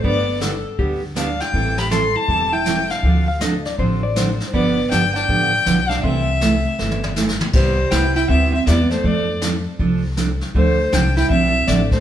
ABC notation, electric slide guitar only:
X:1
M:4/4
L:1/16
Q:"Swing" 1/4=160
K:C
V:1 name="Electric slide guitar"
z4 A4 G2 z6 | z16 | z2 f2 _e2 d2 c2 d2 c3 z | z16 |
z16 | z16 | z16 | z16 |]